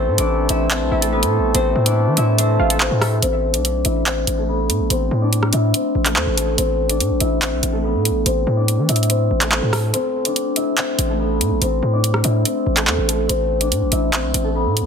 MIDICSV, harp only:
0, 0, Header, 1, 2, 480
1, 0, Start_track
1, 0, Key_signature, 0, "minor"
1, 0, Tempo, 419580
1, 1769, Time_signature, 4, 2, 24, 8
1, 17002, End_track
2, 0, Start_track
2, 0, Title_t, "Harp"
2, 0, Program_c, 0, 46
2, 0, Note_on_c, 0, 57, 69
2, 0, Note_on_c, 0, 60, 88
2, 0, Note_on_c, 0, 62, 67
2, 0, Note_on_c, 0, 64, 70
2, 0, Note_on_c, 0, 69, 81
2, 0, Note_on_c, 0, 72, 115
2, 0, Note_on_c, 0, 74, 87
2, 0, Note_on_c, 0, 76, 83
2, 207, Note_off_c, 0, 74, 0
2, 211, Note_on_c, 0, 74, 81
2, 216, Note_off_c, 0, 62, 0
2, 220, Note_on_c, 0, 62, 63
2, 562, Note_off_c, 0, 76, 0
2, 566, Note_on_c, 0, 76, 79
2, 571, Note_off_c, 0, 64, 0
2, 575, Note_on_c, 0, 64, 66
2, 806, Note_off_c, 0, 72, 0
2, 810, Note_on_c, 0, 72, 89
2, 815, Note_off_c, 0, 60, 0
2, 820, Note_on_c, 0, 60, 63
2, 1155, Note_off_c, 0, 69, 0
2, 1160, Note_on_c, 0, 69, 84
2, 1164, Note_off_c, 0, 57, 0
2, 1169, Note_on_c, 0, 57, 65
2, 1285, Note_on_c, 0, 71, 87
2, 1294, Note_on_c, 0, 59, 68
2, 1354, Note_off_c, 0, 60, 0
2, 1354, Note_off_c, 0, 72, 0
2, 1770, Note_on_c, 0, 72, 115
2, 1779, Note_on_c, 0, 60, 83
2, 1838, Note_off_c, 0, 59, 0
2, 1838, Note_off_c, 0, 71, 0
2, 2120, Note_off_c, 0, 74, 0
2, 2124, Note_on_c, 0, 74, 85
2, 2129, Note_off_c, 0, 62, 0
2, 2133, Note_on_c, 0, 62, 62
2, 2486, Note_off_c, 0, 76, 0
2, 2490, Note_on_c, 0, 76, 89
2, 2495, Note_off_c, 0, 64, 0
2, 2500, Note_on_c, 0, 64, 68
2, 2724, Note_off_c, 0, 72, 0
2, 2729, Note_on_c, 0, 72, 77
2, 2733, Note_off_c, 0, 60, 0
2, 2738, Note_on_c, 0, 60, 60
2, 3083, Note_off_c, 0, 69, 0
2, 3087, Note_on_c, 0, 69, 74
2, 3092, Note_off_c, 0, 57, 0
2, 3096, Note_on_c, 0, 57, 65
2, 3205, Note_off_c, 0, 72, 0
2, 3209, Note_on_c, 0, 72, 82
2, 3213, Note_off_c, 0, 60, 0
2, 3218, Note_on_c, 0, 60, 74
2, 3445, Note_off_c, 0, 69, 0
2, 3450, Note_on_c, 0, 69, 85
2, 3454, Note_off_c, 0, 57, 0
2, 3459, Note_on_c, 0, 57, 65
2, 3680, Note_off_c, 0, 72, 0
2, 3684, Note_on_c, 0, 72, 116
2, 3688, Note_off_c, 0, 60, 0
2, 3693, Note_on_c, 0, 60, 88
2, 4056, Note_off_c, 0, 74, 0
2, 4061, Note_on_c, 0, 74, 73
2, 4065, Note_off_c, 0, 62, 0
2, 4070, Note_on_c, 0, 62, 59
2, 4403, Note_off_c, 0, 76, 0
2, 4408, Note_on_c, 0, 76, 71
2, 4413, Note_off_c, 0, 64, 0
2, 4417, Note_on_c, 0, 64, 60
2, 4642, Note_off_c, 0, 72, 0
2, 4647, Note_on_c, 0, 72, 91
2, 4651, Note_off_c, 0, 60, 0
2, 4655, Note_on_c, 0, 60, 68
2, 5008, Note_off_c, 0, 69, 0
2, 5013, Note_on_c, 0, 69, 78
2, 5018, Note_off_c, 0, 57, 0
2, 5022, Note_on_c, 0, 57, 62
2, 5127, Note_on_c, 0, 71, 90
2, 5136, Note_on_c, 0, 59, 69
2, 5196, Note_off_c, 0, 60, 0
2, 5196, Note_off_c, 0, 72, 0
2, 5611, Note_on_c, 0, 72, 111
2, 5621, Note_on_c, 0, 60, 91
2, 5680, Note_off_c, 0, 59, 0
2, 5680, Note_off_c, 0, 71, 0
2, 5967, Note_off_c, 0, 74, 0
2, 5972, Note_on_c, 0, 74, 89
2, 5977, Note_off_c, 0, 62, 0
2, 5981, Note_on_c, 0, 62, 66
2, 6323, Note_off_c, 0, 76, 0
2, 6327, Note_on_c, 0, 76, 80
2, 6332, Note_off_c, 0, 64, 0
2, 6336, Note_on_c, 0, 64, 64
2, 6570, Note_off_c, 0, 72, 0
2, 6574, Note_on_c, 0, 72, 74
2, 6579, Note_off_c, 0, 60, 0
2, 6583, Note_on_c, 0, 60, 60
2, 6920, Note_off_c, 0, 69, 0
2, 6925, Note_on_c, 0, 69, 76
2, 6929, Note_off_c, 0, 57, 0
2, 6934, Note_on_c, 0, 57, 58
2, 7039, Note_off_c, 0, 72, 0
2, 7043, Note_on_c, 0, 72, 85
2, 7048, Note_off_c, 0, 60, 0
2, 7052, Note_on_c, 0, 60, 59
2, 7283, Note_off_c, 0, 69, 0
2, 7287, Note_on_c, 0, 69, 82
2, 7292, Note_off_c, 0, 57, 0
2, 7296, Note_on_c, 0, 57, 67
2, 7516, Note_off_c, 0, 72, 0
2, 7520, Note_on_c, 0, 72, 113
2, 7525, Note_off_c, 0, 60, 0
2, 7529, Note_on_c, 0, 60, 84
2, 7886, Note_off_c, 0, 74, 0
2, 7891, Note_on_c, 0, 74, 78
2, 7896, Note_off_c, 0, 62, 0
2, 7900, Note_on_c, 0, 62, 60
2, 8240, Note_off_c, 0, 76, 0
2, 8245, Note_on_c, 0, 76, 75
2, 8249, Note_off_c, 0, 64, 0
2, 8254, Note_on_c, 0, 64, 64
2, 8484, Note_off_c, 0, 72, 0
2, 8489, Note_on_c, 0, 72, 83
2, 8494, Note_off_c, 0, 60, 0
2, 8498, Note_on_c, 0, 60, 58
2, 8835, Note_off_c, 0, 69, 0
2, 8839, Note_on_c, 0, 69, 80
2, 8844, Note_off_c, 0, 57, 0
2, 8848, Note_on_c, 0, 57, 63
2, 8965, Note_on_c, 0, 71, 81
2, 8974, Note_on_c, 0, 59, 70
2, 9033, Note_off_c, 0, 60, 0
2, 9033, Note_off_c, 0, 72, 0
2, 9449, Note_on_c, 0, 72, 107
2, 9458, Note_on_c, 0, 60, 78
2, 9518, Note_off_c, 0, 59, 0
2, 9518, Note_off_c, 0, 71, 0
2, 9799, Note_off_c, 0, 74, 0
2, 9804, Note_on_c, 0, 74, 89
2, 9808, Note_off_c, 0, 62, 0
2, 9812, Note_on_c, 0, 62, 57
2, 10166, Note_off_c, 0, 76, 0
2, 10170, Note_on_c, 0, 76, 84
2, 10175, Note_off_c, 0, 64, 0
2, 10179, Note_on_c, 0, 64, 66
2, 10404, Note_off_c, 0, 72, 0
2, 10409, Note_on_c, 0, 72, 76
2, 10413, Note_off_c, 0, 60, 0
2, 10418, Note_on_c, 0, 60, 61
2, 10763, Note_off_c, 0, 69, 0
2, 10767, Note_on_c, 0, 69, 73
2, 10772, Note_off_c, 0, 57, 0
2, 10777, Note_on_c, 0, 57, 63
2, 10885, Note_off_c, 0, 72, 0
2, 10890, Note_on_c, 0, 72, 81
2, 10894, Note_off_c, 0, 60, 0
2, 10899, Note_on_c, 0, 60, 70
2, 11126, Note_off_c, 0, 69, 0
2, 11130, Note_on_c, 0, 69, 83
2, 11135, Note_off_c, 0, 57, 0
2, 11139, Note_on_c, 0, 57, 62
2, 11360, Note_off_c, 0, 72, 0
2, 11365, Note_on_c, 0, 72, 114
2, 11369, Note_off_c, 0, 60, 0
2, 11374, Note_on_c, 0, 60, 91
2, 11735, Note_off_c, 0, 74, 0
2, 11740, Note_on_c, 0, 74, 76
2, 11744, Note_off_c, 0, 62, 0
2, 11748, Note_on_c, 0, 62, 60
2, 12082, Note_off_c, 0, 76, 0
2, 12087, Note_on_c, 0, 76, 74
2, 12092, Note_off_c, 0, 64, 0
2, 12096, Note_on_c, 0, 64, 60
2, 12322, Note_off_c, 0, 72, 0
2, 12327, Note_on_c, 0, 72, 91
2, 12331, Note_off_c, 0, 60, 0
2, 12336, Note_on_c, 0, 60, 66
2, 12689, Note_off_c, 0, 69, 0
2, 12693, Note_on_c, 0, 69, 81
2, 12698, Note_off_c, 0, 57, 0
2, 12702, Note_on_c, 0, 57, 63
2, 12807, Note_on_c, 0, 71, 88
2, 12816, Note_on_c, 0, 59, 73
2, 12876, Note_off_c, 0, 60, 0
2, 12876, Note_off_c, 0, 72, 0
2, 13293, Note_on_c, 0, 72, 115
2, 13302, Note_on_c, 0, 60, 93
2, 13362, Note_off_c, 0, 59, 0
2, 13362, Note_off_c, 0, 71, 0
2, 13647, Note_off_c, 0, 74, 0
2, 13652, Note_on_c, 0, 74, 85
2, 13657, Note_off_c, 0, 62, 0
2, 13661, Note_on_c, 0, 62, 64
2, 14002, Note_off_c, 0, 76, 0
2, 14006, Note_on_c, 0, 76, 81
2, 14011, Note_off_c, 0, 64, 0
2, 14016, Note_on_c, 0, 64, 66
2, 14249, Note_off_c, 0, 72, 0
2, 14254, Note_on_c, 0, 72, 75
2, 14258, Note_off_c, 0, 60, 0
2, 14263, Note_on_c, 0, 60, 59
2, 14600, Note_off_c, 0, 69, 0
2, 14604, Note_on_c, 0, 69, 76
2, 14608, Note_off_c, 0, 57, 0
2, 14613, Note_on_c, 0, 57, 58
2, 14718, Note_off_c, 0, 72, 0
2, 14722, Note_on_c, 0, 72, 88
2, 14727, Note_off_c, 0, 60, 0
2, 14732, Note_on_c, 0, 60, 62
2, 14962, Note_off_c, 0, 69, 0
2, 14967, Note_on_c, 0, 69, 83
2, 14972, Note_off_c, 0, 57, 0
2, 14976, Note_on_c, 0, 57, 67
2, 15196, Note_off_c, 0, 72, 0
2, 15200, Note_on_c, 0, 72, 113
2, 15204, Note_off_c, 0, 60, 0
2, 15209, Note_on_c, 0, 60, 83
2, 15567, Note_off_c, 0, 74, 0
2, 15571, Note_on_c, 0, 74, 79
2, 15576, Note_off_c, 0, 62, 0
2, 15580, Note_on_c, 0, 62, 61
2, 15921, Note_off_c, 0, 76, 0
2, 15925, Note_on_c, 0, 76, 78
2, 15930, Note_off_c, 0, 64, 0
2, 15934, Note_on_c, 0, 64, 65
2, 16165, Note_off_c, 0, 72, 0
2, 16170, Note_on_c, 0, 72, 85
2, 16174, Note_off_c, 0, 60, 0
2, 16179, Note_on_c, 0, 60, 61
2, 16516, Note_off_c, 0, 69, 0
2, 16520, Note_on_c, 0, 69, 83
2, 16525, Note_off_c, 0, 57, 0
2, 16529, Note_on_c, 0, 57, 63
2, 16646, Note_on_c, 0, 71, 86
2, 16655, Note_on_c, 0, 59, 68
2, 16714, Note_off_c, 0, 60, 0
2, 16714, Note_off_c, 0, 72, 0
2, 17002, Note_off_c, 0, 57, 0
2, 17002, Note_off_c, 0, 59, 0
2, 17002, Note_off_c, 0, 62, 0
2, 17002, Note_off_c, 0, 64, 0
2, 17002, Note_off_c, 0, 69, 0
2, 17002, Note_off_c, 0, 71, 0
2, 17002, Note_off_c, 0, 74, 0
2, 17002, Note_off_c, 0, 76, 0
2, 17002, End_track
0, 0, End_of_file